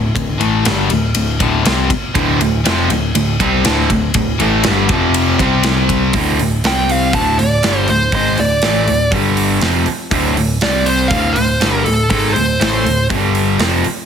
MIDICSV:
0, 0, Header, 1, 10, 480
1, 0, Start_track
1, 0, Key_signature, -1, "minor"
1, 0, Tempo, 497512
1, 161, Time_signature, 4, 2, 24, 8
1, 13559, End_track
2, 0, Start_track
2, 0, Title_t, "Lead electric guitar"
2, 0, Program_c, 0, 29
2, 6431, Note_on_c, 0, 79, 88
2, 6662, Note_off_c, 0, 79, 0
2, 6673, Note_on_c, 0, 77, 78
2, 6891, Note_off_c, 0, 77, 0
2, 6894, Note_on_c, 0, 81, 96
2, 7125, Note_on_c, 0, 74, 84
2, 7134, Note_off_c, 0, 81, 0
2, 7618, Note_off_c, 0, 74, 0
2, 7618, Note_on_c, 0, 72, 86
2, 7851, Note_off_c, 0, 72, 0
2, 7862, Note_on_c, 0, 72, 84
2, 8099, Note_off_c, 0, 72, 0
2, 8100, Note_on_c, 0, 74, 76
2, 8774, Note_off_c, 0, 74, 0
2, 10252, Note_on_c, 0, 74, 91
2, 10473, Note_on_c, 0, 72, 87
2, 10496, Note_off_c, 0, 74, 0
2, 10690, Note_on_c, 0, 77, 108
2, 10703, Note_off_c, 0, 72, 0
2, 10928, Note_on_c, 0, 72, 88
2, 10956, Note_off_c, 0, 77, 0
2, 11423, Note_off_c, 0, 72, 0
2, 11427, Note_on_c, 0, 69, 86
2, 11664, Note_off_c, 0, 69, 0
2, 11676, Note_on_c, 0, 69, 85
2, 11899, Note_off_c, 0, 69, 0
2, 11903, Note_on_c, 0, 72, 85
2, 12596, Note_off_c, 0, 72, 0
2, 13559, End_track
3, 0, Start_track
3, 0, Title_t, "Distorted electric guitar"
3, 0, Program_c, 1, 30
3, 4707, Note_on_c, 1, 48, 97
3, 5178, Note_off_c, 1, 48, 0
3, 13559, End_track
4, 0, Start_track
4, 0, Title_t, "Overdriven electric guitar"
4, 0, Program_c, 2, 29
4, 0, Note_on_c, 2, 38, 65
4, 0, Note_on_c, 2, 45, 66
4, 117, Note_off_c, 2, 38, 0
4, 118, Note_off_c, 2, 45, 0
4, 150, Note_on_c, 2, 38, 60
4, 157, Note_on_c, 2, 45, 66
4, 347, Note_off_c, 2, 38, 0
4, 351, Note_off_c, 2, 45, 0
4, 384, Note_on_c, 2, 45, 89
4, 386, Note_on_c, 2, 52, 100
4, 392, Note_on_c, 2, 57, 103
4, 625, Note_off_c, 2, 45, 0
4, 626, Note_off_c, 2, 52, 0
4, 629, Note_off_c, 2, 57, 0
4, 635, Note_on_c, 2, 43, 89
4, 645, Note_on_c, 2, 50, 99
4, 652, Note_on_c, 2, 55, 101
4, 870, Note_off_c, 2, 43, 0
4, 875, Note_off_c, 2, 50, 0
4, 879, Note_off_c, 2, 55, 0
4, 881, Note_on_c, 2, 38, 52
4, 883, Note_on_c, 2, 45, 55
4, 1072, Note_off_c, 2, 38, 0
4, 1073, Note_off_c, 2, 45, 0
4, 1121, Note_on_c, 2, 38, 59
4, 1121, Note_on_c, 2, 45, 74
4, 1312, Note_off_c, 2, 38, 0
4, 1312, Note_off_c, 2, 45, 0
4, 1364, Note_on_c, 2, 38, 83
4, 1371, Note_on_c, 2, 45, 87
4, 1378, Note_on_c, 2, 50, 95
4, 1594, Note_off_c, 2, 38, 0
4, 1598, Note_off_c, 2, 45, 0
4, 1601, Note_off_c, 2, 50, 0
4, 1602, Note_on_c, 2, 48, 88
4, 1608, Note_on_c, 2, 55, 87
4, 1611, Note_on_c, 2, 60, 108
4, 1833, Note_off_c, 2, 48, 0
4, 1836, Note_off_c, 2, 55, 0
4, 1837, Note_off_c, 2, 60, 0
4, 2081, Note_on_c, 2, 38, 89
4, 2086, Note_on_c, 2, 45, 94
4, 2094, Note_on_c, 2, 50, 114
4, 2312, Note_off_c, 2, 38, 0
4, 2315, Note_off_c, 2, 45, 0
4, 2318, Note_off_c, 2, 50, 0
4, 2333, Note_on_c, 2, 38, 61
4, 2333, Note_on_c, 2, 45, 75
4, 2517, Note_off_c, 2, 38, 0
4, 2518, Note_off_c, 2, 45, 0
4, 2563, Note_on_c, 2, 41, 87
4, 2567, Note_on_c, 2, 48, 93
4, 2571, Note_on_c, 2, 53, 99
4, 2793, Note_off_c, 2, 41, 0
4, 2795, Note_off_c, 2, 48, 0
4, 2797, Note_off_c, 2, 53, 0
4, 2800, Note_on_c, 2, 38, 60
4, 2805, Note_on_c, 2, 45, 60
4, 2991, Note_off_c, 2, 38, 0
4, 2993, Note_off_c, 2, 45, 0
4, 3050, Note_on_c, 2, 38, 72
4, 3053, Note_on_c, 2, 45, 65
4, 3236, Note_off_c, 2, 38, 0
4, 3237, Note_off_c, 2, 45, 0
4, 3289, Note_on_c, 2, 48, 88
4, 3291, Note_on_c, 2, 55, 91
4, 3301, Note_on_c, 2, 60, 89
4, 3516, Note_off_c, 2, 48, 0
4, 3517, Note_off_c, 2, 55, 0
4, 3522, Note_off_c, 2, 60, 0
4, 3524, Note_on_c, 2, 38, 84
4, 3530, Note_on_c, 2, 45, 92
4, 3537, Note_on_c, 2, 50, 103
4, 3753, Note_off_c, 2, 38, 0
4, 3756, Note_off_c, 2, 45, 0
4, 3759, Note_off_c, 2, 50, 0
4, 3775, Note_on_c, 2, 38, 68
4, 3779, Note_on_c, 2, 45, 70
4, 3958, Note_off_c, 2, 38, 0
4, 3960, Note_off_c, 2, 45, 0
4, 4007, Note_on_c, 2, 38, 70
4, 4013, Note_on_c, 2, 45, 69
4, 4194, Note_off_c, 2, 38, 0
4, 4197, Note_off_c, 2, 45, 0
4, 4247, Note_on_c, 2, 45, 84
4, 4255, Note_on_c, 2, 52, 96
4, 4258, Note_on_c, 2, 57, 95
4, 4475, Note_off_c, 2, 45, 0
4, 4479, Note_off_c, 2, 52, 0
4, 4480, Note_off_c, 2, 57, 0
4, 4498, Note_on_c, 2, 43, 90
4, 4501, Note_on_c, 2, 50, 91
4, 4507, Note_on_c, 2, 55, 102
4, 4720, Note_off_c, 2, 43, 0
4, 4722, Note_off_c, 2, 50, 0
4, 4725, Note_off_c, 2, 55, 0
4, 4738, Note_on_c, 2, 41, 75
4, 4746, Note_on_c, 2, 48, 74
4, 4751, Note_on_c, 2, 53, 77
4, 5200, Note_off_c, 2, 41, 0
4, 5204, Note_off_c, 2, 48, 0
4, 5207, Note_off_c, 2, 53, 0
4, 5219, Note_on_c, 2, 48, 87
4, 5228, Note_on_c, 2, 55, 86
4, 5229, Note_on_c, 2, 60, 86
4, 5921, Note_off_c, 2, 48, 0
4, 5926, Note_off_c, 2, 55, 0
4, 5926, Note_off_c, 2, 60, 0
4, 5936, Note_on_c, 2, 38, 97
4, 5945, Note_on_c, 2, 45, 94
4, 5955, Note_on_c, 2, 50, 101
4, 6160, Note_off_c, 2, 38, 0
4, 6164, Note_off_c, 2, 45, 0
4, 6170, Note_off_c, 2, 50, 0
4, 6170, Note_on_c, 2, 38, 62
4, 6177, Note_on_c, 2, 45, 63
4, 6356, Note_off_c, 2, 38, 0
4, 6360, Note_off_c, 2, 45, 0
4, 6421, Note_on_c, 2, 48, 76
4, 6425, Note_on_c, 2, 55, 75
4, 6430, Note_on_c, 2, 60, 92
4, 6883, Note_off_c, 2, 48, 0
4, 6885, Note_off_c, 2, 55, 0
4, 6888, Note_off_c, 2, 60, 0
4, 6895, Note_on_c, 2, 38, 97
4, 6897, Note_on_c, 2, 45, 83
4, 6903, Note_on_c, 2, 50, 96
4, 7120, Note_off_c, 2, 38, 0
4, 7121, Note_off_c, 2, 45, 0
4, 7124, Note_off_c, 2, 50, 0
4, 7140, Note_on_c, 2, 38, 57
4, 7143, Note_on_c, 2, 45, 62
4, 7322, Note_off_c, 2, 38, 0
4, 7324, Note_off_c, 2, 45, 0
4, 7380, Note_on_c, 2, 43, 77
4, 7393, Note_on_c, 2, 50, 81
4, 7396, Note_on_c, 2, 55, 89
4, 7603, Note_off_c, 2, 43, 0
4, 7610, Note_off_c, 2, 50, 0
4, 7612, Note_off_c, 2, 55, 0
4, 7628, Note_on_c, 2, 38, 62
4, 7633, Note_on_c, 2, 45, 69
4, 7807, Note_off_c, 2, 38, 0
4, 7809, Note_off_c, 2, 45, 0
4, 7869, Note_on_c, 2, 44, 82
4, 7875, Note_on_c, 2, 51, 96
4, 7878, Note_on_c, 2, 56, 85
4, 8089, Note_off_c, 2, 44, 0
4, 8092, Note_off_c, 2, 51, 0
4, 8093, Note_off_c, 2, 56, 0
4, 8105, Note_on_c, 2, 38, 63
4, 8111, Note_on_c, 2, 45, 69
4, 8286, Note_off_c, 2, 38, 0
4, 8289, Note_off_c, 2, 45, 0
4, 8343, Note_on_c, 2, 45, 75
4, 8351, Note_on_c, 2, 52, 81
4, 8355, Note_on_c, 2, 57, 84
4, 8566, Note_off_c, 2, 45, 0
4, 8570, Note_off_c, 2, 52, 0
4, 8572, Note_off_c, 2, 57, 0
4, 8573, Note_on_c, 2, 38, 55
4, 8581, Note_on_c, 2, 45, 59
4, 8760, Note_off_c, 2, 38, 0
4, 8765, Note_off_c, 2, 45, 0
4, 8806, Note_on_c, 2, 43, 92
4, 8813, Note_on_c, 2, 50, 95
4, 8818, Note_on_c, 2, 55, 102
4, 9272, Note_off_c, 2, 43, 0
4, 9273, Note_off_c, 2, 50, 0
4, 9276, Note_on_c, 2, 41, 80
4, 9277, Note_on_c, 2, 48, 95
4, 9283, Note_off_c, 2, 55, 0
4, 9286, Note_on_c, 2, 53, 101
4, 9513, Note_off_c, 2, 41, 0
4, 9514, Note_off_c, 2, 48, 0
4, 9519, Note_off_c, 2, 53, 0
4, 9752, Note_on_c, 2, 38, 101
4, 9762, Note_on_c, 2, 50, 104
4, 9763, Note_on_c, 2, 45, 111
4, 9992, Note_off_c, 2, 38, 0
4, 9992, Note_off_c, 2, 45, 0
4, 9997, Note_off_c, 2, 50, 0
4, 10004, Note_on_c, 2, 45, 70
4, 10005, Note_on_c, 2, 38, 60
4, 10197, Note_off_c, 2, 45, 0
4, 10198, Note_off_c, 2, 38, 0
4, 10244, Note_on_c, 2, 48, 82
4, 10246, Note_on_c, 2, 55, 87
4, 10253, Note_on_c, 2, 60, 96
4, 10718, Note_off_c, 2, 48, 0
4, 10719, Note_off_c, 2, 55, 0
4, 10723, Note_off_c, 2, 60, 0
4, 10727, Note_on_c, 2, 38, 88
4, 10731, Note_on_c, 2, 45, 87
4, 10736, Note_on_c, 2, 50, 101
4, 10959, Note_off_c, 2, 38, 0
4, 10962, Note_off_c, 2, 45, 0
4, 10964, Note_off_c, 2, 50, 0
4, 10974, Note_on_c, 2, 38, 61
4, 10974, Note_on_c, 2, 45, 65
4, 11162, Note_off_c, 2, 38, 0
4, 11162, Note_off_c, 2, 45, 0
4, 11211, Note_on_c, 2, 43, 81
4, 11217, Note_on_c, 2, 50, 95
4, 11224, Note_on_c, 2, 55, 104
4, 11442, Note_off_c, 2, 43, 0
4, 11445, Note_off_c, 2, 50, 0
4, 11448, Note_off_c, 2, 55, 0
4, 11457, Note_on_c, 2, 38, 60
4, 11464, Note_on_c, 2, 45, 70
4, 11644, Note_off_c, 2, 38, 0
4, 11648, Note_off_c, 2, 45, 0
4, 11677, Note_on_c, 2, 44, 96
4, 11686, Note_on_c, 2, 51, 97
4, 11699, Note_on_c, 2, 56, 101
4, 11915, Note_off_c, 2, 44, 0
4, 11918, Note_off_c, 2, 51, 0
4, 11920, Note_on_c, 2, 38, 62
4, 11922, Note_on_c, 2, 45, 65
4, 11926, Note_off_c, 2, 56, 0
4, 12115, Note_off_c, 2, 38, 0
4, 12117, Note_off_c, 2, 45, 0
4, 12167, Note_on_c, 2, 45, 82
4, 12177, Note_on_c, 2, 52, 95
4, 12181, Note_on_c, 2, 57, 103
4, 12400, Note_off_c, 2, 45, 0
4, 12405, Note_off_c, 2, 52, 0
4, 12407, Note_off_c, 2, 57, 0
4, 12412, Note_on_c, 2, 38, 50
4, 12418, Note_on_c, 2, 45, 51
4, 12602, Note_off_c, 2, 38, 0
4, 12605, Note_off_c, 2, 45, 0
4, 12639, Note_on_c, 2, 43, 89
4, 12652, Note_on_c, 2, 50, 90
4, 12654, Note_on_c, 2, 55, 99
4, 13116, Note_off_c, 2, 43, 0
4, 13122, Note_off_c, 2, 50, 0
4, 13123, Note_off_c, 2, 55, 0
4, 13125, Note_on_c, 2, 41, 87
4, 13130, Note_on_c, 2, 48, 87
4, 13138, Note_on_c, 2, 53, 94
4, 13359, Note_off_c, 2, 41, 0
4, 13361, Note_off_c, 2, 48, 0
4, 13365, Note_off_c, 2, 53, 0
4, 13559, End_track
5, 0, Start_track
5, 0, Title_t, "Overdriven electric guitar"
5, 0, Program_c, 3, 29
5, 7586, Note_on_c, 3, 38, 53
5, 7593, Note_on_c, 3, 45, 58
5, 7786, Note_off_c, 3, 38, 0
5, 7789, Note_off_c, 3, 45, 0
5, 13559, End_track
6, 0, Start_track
6, 0, Title_t, "Picked electric bass"
6, 0, Program_c, 4, 34
6, 0, Note_on_c, 4, 26, 79
6, 136, Note_off_c, 4, 26, 0
6, 152, Note_on_c, 4, 26, 85
6, 379, Note_off_c, 4, 26, 0
6, 400, Note_on_c, 4, 33, 87
6, 624, Note_off_c, 4, 33, 0
6, 635, Note_on_c, 4, 31, 90
6, 861, Note_off_c, 4, 31, 0
6, 875, Note_on_c, 4, 26, 73
6, 1100, Note_off_c, 4, 26, 0
6, 1119, Note_on_c, 4, 26, 72
6, 1342, Note_off_c, 4, 26, 0
6, 1354, Note_on_c, 4, 26, 99
6, 1579, Note_off_c, 4, 26, 0
6, 1600, Note_on_c, 4, 36, 82
6, 1823, Note_off_c, 4, 36, 0
6, 2078, Note_on_c, 4, 26, 108
6, 2301, Note_off_c, 4, 26, 0
6, 2329, Note_on_c, 4, 26, 71
6, 2547, Note_off_c, 4, 26, 0
6, 2571, Note_on_c, 4, 29, 97
6, 2788, Note_off_c, 4, 29, 0
6, 2810, Note_on_c, 4, 26, 72
6, 3027, Note_off_c, 4, 26, 0
6, 3041, Note_on_c, 4, 26, 77
6, 3262, Note_off_c, 4, 26, 0
6, 3281, Note_on_c, 4, 36, 92
6, 3502, Note_off_c, 4, 36, 0
6, 3525, Note_on_c, 4, 26, 82
6, 3744, Note_off_c, 4, 26, 0
6, 3759, Note_on_c, 4, 26, 81
6, 3981, Note_off_c, 4, 26, 0
6, 4000, Note_on_c, 4, 26, 90
6, 4222, Note_off_c, 4, 26, 0
6, 4252, Note_on_c, 4, 33, 97
6, 4468, Note_off_c, 4, 33, 0
6, 4506, Note_on_c, 4, 31, 92
6, 4715, Note_off_c, 4, 31, 0
6, 4722, Note_on_c, 4, 29, 90
6, 5166, Note_off_c, 4, 29, 0
6, 5209, Note_on_c, 4, 36, 95
6, 5885, Note_off_c, 4, 36, 0
6, 5918, Note_on_c, 4, 26, 94
6, 6142, Note_off_c, 4, 26, 0
6, 6170, Note_on_c, 4, 26, 67
6, 6388, Note_off_c, 4, 26, 0
6, 6405, Note_on_c, 4, 36, 86
6, 6849, Note_off_c, 4, 36, 0
6, 6878, Note_on_c, 4, 26, 85
6, 7102, Note_off_c, 4, 26, 0
6, 7135, Note_on_c, 4, 26, 73
6, 7352, Note_off_c, 4, 26, 0
6, 7376, Note_on_c, 4, 31, 78
6, 7593, Note_off_c, 4, 31, 0
6, 7612, Note_on_c, 4, 26, 77
6, 7831, Note_off_c, 4, 26, 0
6, 7838, Note_on_c, 4, 32, 94
6, 8063, Note_off_c, 4, 32, 0
6, 8087, Note_on_c, 4, 26, 68
6, 8308, Note_off_c, 4, 26, 0
6, 8324, Note_on_c, 4, 33, 88
6, 8547, Note_off_c, 4, 33, 0
6, 8565, Note_on_c, 4, 26, 66
6, 8787, Note_off_c, 4, 26, 0
6, 8799, Note_on_c, 4, 31, 90
6, 9248, Note_off_c, 4, 31, 0
6, 9275, Note_on_c, 4, 29, 90
6, 9503, Note_off_c, 4, 29, 0
6, 9756, Note_on_c, 4, 26, 95
6, 9984, Note_off_c, 4, 26, 0
6, 10007, Note_on_c, 4, 26, 75
6, 10230, Note_off_c, 4, 26, 0
6, 10258, Note_on_c, 4, 36, 84
6, 10699, Note_off_c, 4, 36, 0
6, 10717, Note_on_c, 4, 26, 93
6, 10945, Note_off_c, 4, 26, 0
6, 10970, Note_on_c, 4, 26, 82
6, 11192, Note_off_c, 4, 26, 0
6, 11205, Note_on_c, 4, 31, 82
6, 11429, Note_off_c, 4, 31, 0
6, 11449, Note_on_c, 4, 26, 78
6, 11671, Note_off_c, 4, 26, 0
6, 11679, Note_on_c, 4, 32, 88
6, 11906, Note_off_c, 4, 32, 0
6, 11928, Note_on_c, 4, 26, 72
6, 12151, Note_off_c, 4, 26, 0
6, 12160, Note_on_c, 4, 33, 97
6, 12387, Note_off_c, 4, 33, 0
6, 12403, Note_on_c, 4, 26, 66
6, 12628, Note_off_c, 4, 26, 0
6, 12646, Note_on_c, 4, 31, 89
6, 13093, Note_off_c, 4, 31, 0
6, 13115, Note_on_c, 4, 29, 76
6, 13344, Note_off_c, 4, 29, 0
6, 13559, End_track
7, 0, Start_track
7, 0, Title_t, "Muted distorted electric guitar strokes"
7, 1841, Note_on_c, 9, 29, 59
7, 1937, Note_off_c, 9, 29, 0
7, 13559, End_track
8, 0, Start_track
8, 0, Title_t, "Muted overdriven electric guitar strokes"
8, 1854, Note_on_c, 9, 29, 58
8, 1950, Note_off_c, 9, 29, 0
8, 9526, Note_on_c, 9, 29, 57
8, 9623, Note_off_c, 9, 29, 0
8, 13377, Note_on_c, 9, 29, 59
8, 13473, Note_off_c, 9, 29, 0
8, 13559, End_track
9, 0, Start_track
9, 0, Title_t, "Muted picked electric bass strokes"
9, 1832, Note_on_c, 9, 29, 42
9, 1928, Note_off_c, 9, 29, 0
9, 9535, Note_on_c, 9, 29, 39
9, 9631, Note_off_c, 9, 29, 0
9, 13370, Note_on_c, 9, 29, 37
9, 13466, Note_off_c, 9, 29, 0
9, 13559, End_track
10, 0, Start_track
10, 0, Title_t, "Drums"
10, 150, Note_on_c, 9, 36, 112
10, 157, Note_on_c, 9, 51, 88
10, 247, Note_off_c, 9, 36, 0
10, 253, Note_off_c, 9, 51, 0
10, 392, Note_on_c, 9, 51, 64
10, 489, Note_off_c, 9, 51, 0
10, 630, Note_on_c, 9, 51, 92
10, 640, Note_on_c, 9, 38, 116
10, 727, Note_off_c, 9, 51, 0
10, 737, Note_off_c, 9, 38, 0
10, 867, Note_on_c, 9, 51, 67
10, 963, Note_off_c, 9, 51, 0
10, 1106, Note_on_c, 9, 51, 97
10, 1202, Note_off_c, 9, 51, 0
10, 1353, Note_on_c, 9, 36, 80
10, 1353, Note_on_c, 9, 51, 70
10, 1449, Note_off_c, 9, 36, 0
10, 1449, Note_off_c, 9, 51, 0
10, 1597, Note_on_c, 9, 51, 96
10, 1606, Note_on_c, 9, 38, 112
10, 1693, Note_off_c, 9, 51, 0
10, 1703, Note_off_c, 9, 38, 0
10, 1834, Note_on_c, 9, 36, 83
10, 1836, Note_on_c, 9, 51, 69
10, 1930, Note_off_c, 9, 36, 0
10, 1933, Note_off_c, 9, 51, 0
10, 2076, Note_on_c, 9, 36, 99
10, 2077, Note_on_c, 9, 51, 100
10, 2172, Note_off_c, 9, 36, 0
10, 2174, Note_off_c, 9, 51, 0
10, 2323, Note_on_c, 9, 51, 76
10, 2419, Note_off_c, 9, 51, 0
10, 2562, Note_on_c, 9, 51, 87
10, 2571, Note_on_c, 9, 38, 103
10, 2658, Note_off_c, 9, 51, 0
10, 2668, Note_off_c, 9, 38, 0
10, 2800, Note_on_c, 9, 51, 77
10, 2896, Note_off_c, 9, 51, 0
10, 3040, Note_on_c, 9, 51, 104
10, 3137, Note_off_c, 9, 51, 0
10, 3281, Note_on_c, 9, 36, 75
10, 3285, Note_on_c, 9, 51, 68
10, 3377, Note_off_c, 9, 36, 0
10, 3381, Note_off_c, 9, 51, 0
10, 3518, Note_on_c, 9, 51, 95
10, 3528, Note_on_c, 9, 38, 104
10, 3615, Note_off_c, 9, 51, 0
10, 3624, Note_off_c, 9, 38, 0
10, 3762, Note_on_c, 9, 36, 74
10, 3763, Note_on_c, 9, 51, 67
10, 3858, Note_off_c, 9, 36, 0
10, 3859, Note_off_c, 9, 51, 0
10, 3995, Note_on_c, 9, 51, 89
10, 4001, Note_on_c, 9, 36, 114
10, 4091, Note_off_c, 9, 51, 0
10, 4097, Note_off_c, 9, 36, 0
10, 4243, Note_on_c, 9, 51, 68
10, 4339, Note_off_c, 9, 51, 0
10, 4472, Note_on_c, 9, 51, 94
10, 4482, Note_on_c, 9, 38, 107
10, 4569, Note_off_c, 9, 51, 0
10, 4579, Note_off_c, 9, 38, 0
10, 4717, Note_on_c, 9, 51, 74
10, 4721, Note_on_c, 9, 36, 106
10, 4813, Note_off_c, 9, 51, 0
10, 4817, Note_off_c, 9, 36, 0
10, 4962, Note_on_c, 9, 51, 97
10, 5059, Note_off_c, 9, 51, 0
10, 5204, Note_on_c, 9, 36, 80
10, 5209, Note_on_c, 9, 51, 61
10, 5300, Note_off_c, 9, 36, 0
10, 5305, Note_off_c, 9, 51, 0
10, 5436, Note_on_c, 9, 51, 94
10, 5446, Note_on_c, 9, 38, 104
10, 5533, Note_off_c, 9, 51, 0
10, 5542, Note_off_c, 9, 38, 0
10, 5684, Note_on_c, 9, 36, 79
10, 5688, Note_on_c, 9, 51, 70
10, 5780, Note_off_c, 9, 36, 0
10, 5785, Note_off_c, 9, 51, 0
10, 5918, Note_on_c, 9, 46, 70
10, 5923, Note_on_c, 9, 36, 107
10, 6014, Note_off_c, 9, 46, 0
10, 6019, Note_off_c, 9, 36, 0
10, 6169, Note_on_c, 9, 46, 52
10, 6265, Note_off_c, 9, 46, 0
10, 6406, Note_on_c, 9, 46, 73
10, 6416, Note_on_c, 9, 38, 103
10, 6503, Note_off_c, 9, 46, 0
10, 6513, Note_off_c, 9, 38, 0
10, 6652, Note_on_c, 9, 46, 54
10, 6748, Note_off_c, 9, 46, 0
10, 6882, Note_on_c, 9, 36, 101
10, 6886, Note_on_c, 9, 46, 69
10, 6979, Note_off_c, 9, 36, 0
10, 6982, Note_off_c, 9, 46, 0
10, 7129, Note_on_c, 9, 46, 48
10, 7226, Note_off_c, 9, 46, 0
10, 7362, Note_on_c, 9, 46, 62
10, 7372, Note_on_c, 9, 38, 105
10, 7459, Note_off_c, 9, 46, 0
10, 7468, Note_off_c, 9, 38, 0
10, 7600, Note_on_c, 9, 46, 43
10, 7696, Note_off_c, 9, 46, 0
10, 7837, Note_on_c, 9, 36, 102
10, 7838, Note_on_c, 9, 46, 67
10, 7934, Note_off_c, 9, 36, 0
10, 7934, Note_off_c, 9, 46, 0
10, 8080, Note_on_c, 9, 46, 52
10, 8177, Note_off_c, 9, 46, 0
10, 8313, Note_on_c, 9, 46, 67
10, 8323, Note_on_c, 9, 38, 97
10, 8410, Note_off_c, 9, 46, 0
10, 8420, Note_off_c, 9, 38, 0
10, 8564, Note_on_c, 9, 46, 54
10, 8660, Note_off_c, 9, 46, 0
10, 8797, Note_on_c, 9, 36, 102
10, 8803, Note_on_c, 9, 46, 71
10, 8893, Note_off_c, 9, 36, 0
10, 8900, Note_off_c, 9, 46, 0
10, 9040, Note_on_c, 9, 46, 52
10, 9136, Note_off_c, 9, 46, 0
10, 9276, Note_on_c, 9, 46, 71
10, 9286, Note_on_c, 9, 38, 93
10, 9372, Note_off_c, 9, 46, 0
10, 9382, Note_off_c, 9, 38, 0
10, 9512, Note_on_c, 9, 46, 49
10, 9608, Note_off_c, 9, 46, 0
10, 9757, Note_on_c, 9, 36, 98
10, 9760, Note_on_c, 9, 46, 82
10, 9854, Note_off_c, 9, 36, 0
10, 9857, Note_off_c, 9, 46, 0
10, 10006, Note_on_c, 9, 46, 55
10, 10102, Note_off_c, 9, 46, 0
10, 10237, Note_on_c, 9, 46, 70
10, 10247, Note_on_c, 9, 38, 97
10, 10334, Note_off_c, 9, 46, 0
10, 10343, Note_off_c, 9, 38, 0
10, 10480, Note_on_c, 9, 46, 58
10, 10577, Note_off_c, 9, 46, 0
10, 10716, Note_on_c, 9, 36, 105
10, 10716, Note_on_c, 9, 46, 80
10, 10812, Note_off_c, 9, 46, 0
10, 10813, Note_off_c, 9, 36, 0
10, 10958, Note_on_c, 9, 46, 55
10, 11055, Note_off_c, 9, 46, 0
10, 11202, Note_on_c, 9, 46, 68
10, 11211, Note_on_c, 9, 38, 99
10, 11298, Note_off_c, 9, 46, 0
10, 11308, Note_off_c, 9, 38, 0
10, 11441, Note_on_c, 9, 46, 48
10, 11537, Note_off_c, 9, 46, 0
10, 11676, Note_on_c, 9, 46, 68
10, 11679, Note_on_c, 9, 36, 98
10, 11772, Note_off_c, 9, 46, 0
10, 11775, Note_off_c, 9, 36, 0
10, 11925, Note_on_c, 9, 46, 47
10, 12021, Note_off_c, 9, 46, 0
10, 12168, Note_on_c, 9, 46, 68
10, 12178, Note_on_c, 9, 38, 108
10, 12265, Note_off_c, 9, 46, 0
10, 12274, Note_off_c, 9, 38, 0
10, 12412, Note_on_c, 9, 46, 55
10, 12508, Note_off_c, 9, 46, 0
10, 12642, Note_on_c, 9, 36, 103
10, 12647, Note_on_c, 9, 46, 72
10, 12738, Note_off_c, 9, 36, 0
10, 12743, Note_off_c, 9, 46, 0
10, 12879, Note_on_c, 9, 46, 46
10, 12976, Note_off_c, 9, 46, 0
10, 13116, Note_on_c, 9, 46, 71
10, 13126, Note_on_c, 9, 38, 96
10, 13213, Note_off_c, 9, 46, 0
10, 13222, Note_off_c, 9, 38, 0
10, 13356, Note_on_c, 9, 46, 47
10, 13453, Note_off_c, 9, 46, 0
10, 13559, End_track
0, 0, End_of_file